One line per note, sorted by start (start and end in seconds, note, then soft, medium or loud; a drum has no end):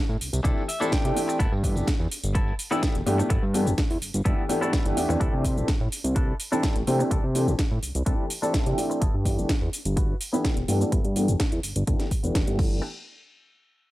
0.09 0.17 A2 loud
0.09 tambourine soft
0.21 0.31 C2 soft
0.21 open hi-hat loud
0.21 shaker medium
0.33 0.41 C2 medium
0.33 closed hi-hat medium
0.33 tambourine medium
0.33 shaker soft
0.44 0.53 C2 loud
0.44 0.59 E3 medium
0.44 0.59 A3 medium
0.44 0.59 C4 medium
0.44 0.62 D4 medium
0.44 0.59 D4 medium
0.44 0.63 E4 medium
0.44 0.59 G4 medium
0.44 0.63 A4 loud
0.44 kick loud
0.44 closed hi-hat medium
0.44 tambourine medium
0.44 shaker soft
0.57 tambourine soft
0.68 0.91 E5 medium
0.68 open hi-hat loud
0.68 shaker medium
0.80 0.90 E3 medium
0.80 0.91 A3 medium
0.80 0.91 C4 medium
0.80 1.04 D4 medium
0.80 0.91 D4 medium
0.80 1.04 E4 medium
0.80 0.91 G4 medium
0.80 1.05 A4 loud
0.80 tambourine medium
0.80 shaker soft
0.92 1.03 E3 medium
0.92 1.03 A3 medium
0.92 1.03 C4 medium
0.92 1.03 D4 medium
0.92 1.03 G4 medium
0.92 1.37 G5 medium
0.92 kick loud
0.92 snare loud
0.92 closed hi-hat medium
0.92 tambourine medium
0.92 shaker soft
1.04 1.12 C3 loud
1.04 1.14 E3 medium
1.04 1.14 A3 medium
1.04 1.15 C4 medium
1.04 1.15 D4 medium
1.04 1.15 G4 medium
1.04 closed hi-hat medium
1.04 tambourine soft
1.16 1.38 E3 medium
1.16 1.38 A3 medium
1.16 1.38 C4 medium
1.16 1.38 D4 medium
1.16 1.39 G4 medium
1.16 open hi-hat loud
1.16 shaker medium
1.28 muted clean electric guitar stroke medium
1.28 tambourine medium
1.28 shaker soft
1.39 1.48 G1 loud
1.39 1.52 B3 loud
1.39 1.52 E4 loud
1.39 1.52 A4 loud
1.39 kick loud
1.39 closed hi-hat medium
1.39 tambourine medium
1.39 shaker soft
1.52 1.77 G2 loud
1.52 tambourine soft
1.63 1.86 E3 medium
1.63 1.86 A3 medium
1.63 1.86 B3 medium
1.63 1.86 D4 medium
1.63 1.86 G4 medium
1.63 muted clean electric guitar stroke soft
1.63 kick medium
1.63 open hi-hat loud
1.63 shaker medium
1.76 1.84 E1 loud
1.76 tambourine medium
1.76 shaker soft
1.87 kick loud
1.87 snare loud
1.87 closed hi-hat medium
1.87 shaker soft
2.00 2.08 E2 loud
2.00 tambourine soft
2.11 open hi-hat loud
2.11 shaker medium
2.23 2.53 G1 medium
2.23 closed hi-hat medium
2.23 tambourine medium
2.23 shaker soft
2.35 2.53 B3 medium
2.35 2.53 E4 medium
2.35 2.54 A4 loud
2.35 kick loud
2.35 closed hi-hat medium
2.35 tambourine medium
2.35 shaker soft
2.47 tambourine soft
2.59 open hi-hat loud
2.59 shaker medium
2.71 2.93 E3 medium
2.71 2.93 A3 medium
2.71 2.95 B3 medium
2.71 2.93 B3 medium
2.71 2.93 D4 medium
2.71 2.95 E4 medium
2.71 2.93 G4 loud
2.71 2.95 A4 loud
2.71 tambourine medium
2.71 shaker soft
2.83 kick loud
2.83 snare loud
2.83 closed hi-hat medium
2.83 shaker soft
2.95 3.03 E1 loud
2.95 closed hi-hat medium
2.95 tambourine soft
3.06 3.23 G2 medium
3.06 3.16 E3 medium
3.06 3.16 A3 medium
3.06 3.16 B3 medium
3.06 3.16 D4 medium
3.06 3.16 G4 loud
3.06 open hi-hat loud
3.06 shaker medium
3.18 3.32 E3 medium
3.18 3.32 A3 medium
3.18 3.32 B3 medium
3.18 3.32 D4 medium
3.18 3.32 G4 medium
3.18 muted clean electric guitar stroke medium
3.18 tambourine medium
3.18 shaker soft
3.30 3.38 G1 loud
3.30 3.42 B3 loud
3.30 3.43 E4 loud
3.30 3.43 A4 loud
3.30 kick loud
3.30 closed hi-hat medium
3.30 tambourine medium
3.30 shaker soft
3.43 3.68 G2 loud
3.43 tambourine soft
3.54 3.68 E3 medium
3.54 3.68 A3 medium
3.54 3.68 B3 medium
3.54 3.68 D4 medium
3.54 3.68 G4 medium
3.54 muted clean electric guitar stroke soft
3.54 open hi-hat loud
3.54 shaker medium
3.66 3.74 E1 loud
3.66 tambourine medium
3.66 shaker soft
3.78 kick loud
3.78 snare loud
3.78 closed hi-hat medium
3.78 tambourine medium
3.78 shaker soft
3.90 3.98 E2 loud
3.90 open hi-hat medium
3.90 tambourine soft
4.02 4.12 G1 soft
4.02 open hi-hat loud
4.02 shaker medium
4.13 4.22 G1 medium
4.13 closed hi-hat soft
4.13 tambourine medium
4.13 shaker soft
4.25 4.34 G1 loud
4.25 4.39 E3 medium
4.25 4.40 A3 medium
4.25 4.43 B3 medium
4.25 4.40 B3 medium
4.25 4.40 D4 medium
4.25 4.44 E4 medium
4.25 4.40 G4 medium
4.25 4.44 A4 loud
4.25 kick loud
4.25 closed hi-hat medium
4.25 shaker soft
4.39 tambourine soft
4.49 4.58 E3 medium
4.49 4.59 A3 medium
4.49 4.59 B3 medium
4.49 4.59 D4 medium
4.49 4.59 G4 loud
4.49 open hi-hat loud
4.49 shaker medium
4.61 4.75 E3 medium
4.61 4.75 A3 medium
4.61 4.85 B3 medium
4.61 4.75 B3 medium
4.61 4.75 D4 medium
4.61 4.86 E4 medium
4.61 4.75 G4 loud
4.61 4.86 A4 loud
4.61 tambourine medium
4.61 shaker soft
4.73 kick loud
4.73 snare loud
4.73 closed hi-hat medium
4.73 shaker soft
4.85 4.93 G1 medium
4.85 4.94 E3 medium
4.85 4.94 A3 medium
4.85 4.94 B3 medium
4.85 4.94 D4 medium
4.85 4.94 G4 loud
4.85 closed hi-hat medium
4.85 tambourine soft
4.96 5.07 E2 soft
4.96 5.07 E3 medium
4.96 5.07 A3 medium
4.96 5.07 B3 medium
4.96 5.08 D4 medium
4.96 5.08 G4 loud
4.96 open hi-hat loud
4.96 shaker medium
5.09 5.17 E2 medium
5.09 5.42 E3 loud
5.09 5.42 A3 medium
5.09 5.42 C4 medium
5.09 5.42 D4 medium
5.09 5.42 G4 loud
5.09 muted clean electric guitar stroke medium
5.09 tambourine medium
5.09 shaker soft
5.20 5.29 C2 loud
5.20 5.33 D4 loud
5.20 5.33 E4 loud
5.20 5.33 A4 loud
5.20 kick loud
5.20 closed hi-hat medium
5.20 shaker soft
5.33 5.59 C3 loud
5.33 tambourine soft
5.44 5.67 E3 medium
5.44 5.67 A3 medium
5.44 5.67 C4 medium
5.44 5.67 D4 medium
5.44 5.67 G4 medium
5.44 muted clean electric guitar stroke soft
5.44 kick medium
5.44 open hi-hat loud
5.44 shaker medium
5.57 5.65 A1 loud
5.57 tambourine medium
5.57 shaker soft
5.68 kick loud
5.68 snare loud
5.68 closed hi-hat medium
5.68 shaker soft
5.81 5.88 A2 loud
5.81 tambourine soft
5.92 open hi-hat loud
5.92 shaker medium
6.04 6.33 C2 medium
6.04 closed hi-hat soft
6.04 tambourine medium
6.04 shaker soft
6.16 6.34 D4 medium
6.16 6.34 E4 medium
6.16 6.35 A4 loud
6.16 kick loud
6.16 closed hi-hat medium
6.16 shaker soft
6.29 tambourine soft
6.40 open hi-hat loud
6.40 shaker medium
6.52 6.74 E3 medium
6.52 6.74 A3 medium
6.52 6.74 C4 medium
6.52 6.76 D4 medium
6.52 6.74 D4 medium
6.52 6.76 E4 medium
6.52 6.74 G4 medium
6.52 6.76 A4 loud
6.52 tambourine medium
6.52 shaker soft
6.63 kick loud
6.63 snare loud
6.63 closed hi-hat medium
6.63 shaker soft
6.76 6.84 A1 medium
6.76 closed hi-hat medium
6.87 7.04 C3 medium
6.87 6.97 E3 medium
6.87 6.97 A3 medium
6.87 6.97 C4 medium
6.87 6.97 D4 medium
6.87 6.97 G4 loud
6.87 open hi-hat loud
6.87 shaker medium
6.99 7.13 E3 medium
6.99 7.13 A3 medium
6.99 7.13 C4 medium
6.99 7.13 D4 medium
6.99 7.13 G4 medium
6.99 muted clean electric guitar stroke medium
6.99 tambourine medium
6.99 shaker soft
7.11 7.19 C2 loud
7.11 7.23 D4 loud
7.11 7.24 E4 loud
7.11 7.24 A4 loud
7.11 kick loud
7.11 closed hi-hat medium
7.11 shaker soft
7.23 7.49 C3 loud
7.23 tambourine soft
7.35 7.49 E3 medium
7.35 7.49 A3 medium
7.35 7.49 C4 medium
7.35 7.49 D4 medium
7.35 7.49 G4 medium
7.35 muted clean electric guitar stroke soft
7.35 open hi-hat loud
7.35 shaker medium
7.47 7.55 A1 loud
7.47 tambourine medium
7.47 shaker soft
7.59 kick loud
7.59 snare loud
7.59 closed hi-hat medium
7.59 shaker soft
7.71 7.79 A2 loud
7.83 7.93 C2 soft
7.83 open hi-hat loud
7.83 shaker medium
7.94 8.03 C2 medium
7.94 closed hi-hat medium
7.94 tambourine medium
7.94 shaker soft
8.06 8.15 C2 loud
8.06 8.21 E3 medium
8.06 8.21 A3 medium
8.06 8.21 C4 medium
8.06 8.24 D4 medium
8.06 8.21 D4 medium
8.06 8.25 E4 medium
8.06 8.21 G4 medium
8.06 8.25 A4 loud
8.06 kick loud
8.06 closed hi-hat medium
8.06 shaker soft
8.19 tambourine soft
8.30 open hi-hat loud
8.30 shaker medium
8.42 8.52 E3 medium
8.42 8.52 A3 medium
8.42 8.52 C4 medium
8.42 8.66 D4 medium
8.42 8.52 D4 medium
8.42 8.67 E4 medium
8.42 8.53 G4 medium
8.42 8.67 A4 loud
8.42 shaker soft
8.54 8.64 E3 medium
8.54 8.65 A3 medium
8.54 8.65 C4 medium
8.54 8.65 D4 medium
8.54 kick loud
8.54 snare loud
8.54 closed hi-hat medium
8.54 shaker soft
8.66 8.74 C3 loud
8.66 8.76 E3 medium
8.66 8.76 A3 medium
8.66 8.76 C4 medium
8.66 8.76 D4 medium
8.66 8.76 G4 medium
8.66 closed hi-hat medium
8.78 9.00 E3 medium
8.78 9.00 A3 medium
8.78 9.00 C4 medium
8.78 9.00 D4 medium
8.78 9.00 G4 medium
8.78 open hi-hat loud
8.78 shaker medium
8.90 muted clean electric guitar stroke medium
8.90 tambourine medium
8.90 shaker soft
9.01 9.10 G1 loud
9.01 9.14 B3 loud
9.01 9.14 E4 loud
9.01 9.14 A4 loud
9.01 kick loud
9.01 closed hi-hat medium
9.01 shaker soft
9.14 9.39 G2 loud
9.25 9.48 E3 medium
9.25 9.48 A3 medium
9.25 9.48 B3 medium
9.25 9.48 D4 medium
9.25 9.48 G4 medium
9.25 muted clean electric guitar stroke soft
9.25 kick medium
9.25 open hi-hat medium
9.25 shaker medium
9.38 9.45 E1 loud
9.38 tambourine medium
9.38 shaker soft
9.49 kick loud
9.49 snare loud
9.49 closed hi-hat medium
9.49 shaker soft
9.62 9.69 E2 loud
9.73 open hi-hat loud
9.73 shaker medium
9.85 10.15 G1 medium
9.85 closed hi-hat medium
9.85 shaker soft
9.97 10.15 B3 medium
9.97 10.15 E4 medium
9.97 10.15 F#4 medium
9.97 kick loud
9.97 closed hi-hat medium
9.97 shaker soft
10.21 open hi-hat loud
10.21 shaker medium
10.33 10.55 E3 medium
10.33 10.55 A3 medium
10.33 10.57 B3 medium
10.33 10.55 B3 medium
10.33 10.55 D4 medium
10.33 10.57 E4 medium
10.33 10.55 G4 medium
10.33 10.57 B4 medium
10.33 shaker soft
10.45 kick loud
10.45 snare loud
10.45 closed hi-hat medium
10.45 shaker soft
10.57 10.65 E1 medium
10.57 closed hi-hat medium
10.68 10.84 G2 medium
10.68 10.78 E3 medium
10.68 10.78 A3 medium
10.68 10.78 B3 medium
10.68 10.78 D4 medium
10.68 10.78 G4 loud
10.68 open hi-hat loud
10.68 shaker medium
10.80 10.94 E3 medium
10.80 10.94 A3 medium
10.80 10.94 B3 medium
10.80 10.94 D4 medium
10.80 10.94 G4 medium
10.80 muted clean electric guitar stroke medium
10.80 shaker soft
10.92 11.00 G1 loud
10.92 11.04 B3 loud
10.92 11.05 E4 loud
10.92 11.05 A4 loud
10.92 kick loud
10.92 closed hi-hat medium
10.92 shaker soft
11.05 11.30 G2 loud
11.05 closed hi-hat soft
11.16 11.30 E3 medium
11.16 11.30 A3 medium
11.16 11.30 B3 medium
11.16 11.30 D4 medium
11.16 11.30 G4 medium
11.16 muted clean electric guitar stroke soft
11.16 open hi-hat loud
11.16 shaker medium
11.28 11.36 E1 loud
11.28 closed hi-hat soft
11.28 shaker soft
11.40 kick loud
11.40 snare loud
11.40 closed hi-hat medium
11.40 shaker soft
11.52 11.60 E2 loud
11.52 closed hi-hat soft
11.63 11.74 G1 soft
11.63 open hi-hat loud
11.63 shaker medium
11.76 11.84 G1 medium
11.76 closed hi-hat medium
11.76 shaker soft
11.87 11.96 G1 loud
11.87 12.01 E3 medium
11.87 12.01 A3 medium
11.87 12.05 B3 medium
11.87 12.02 B3 medium
11.87 12.02 D4 medium
11.87 12.06 E4 medium
11.87 12.02 G4 medium
11.87 12.06 A4 loud
11.87 kick loud
11.87 closed hi-hat medium
11.87 shaker soft
12.00 snare soft
12.00 closed hi-hat soft
12.11 kick medium
12.11 open hi-hat loud
12.11 shaker medium
12.23 12.31 E1 medium
12.23 12.33 E3 medium
12.23 12.33 A3 medium
12.23 12.47 B3 medium
12.23 12.34 B3 medium
12.23 12.34 D4 medium
12.23 12.47 E4 medium
12.23 12.34 G4 medium
12.23 12.48 B4 loud
12.23 closed hi-hat soft
12.23 shaker soft
12.35 12.43 E1 medium
12.35 12.45 E3 medium
12.35 12.46 A3 medium
12.35 12.46 B3 medium
12.35 kick loud
12.35 snare loud
12.35 closed hi-hat medium
12.35 shaker soft
12.47 12.58 G2 medium
12.47 12.56 E3 medium
12.47 12.57 A3 medium
12.47 12.57 B3 medium
12.47 12.57 D4 medium
12.47 12.58 G4 medium
12.47 closed hi-hat medium
12.58 12.81 G1 loud
12.58 12.76 E3 medium
12.58 12.77 A3 medium
12.58 12.81 B3 medium
12.58 12.81 E4 medium
12.58 12.81 A4 medium
12.58 kick loud
12.58 crash medium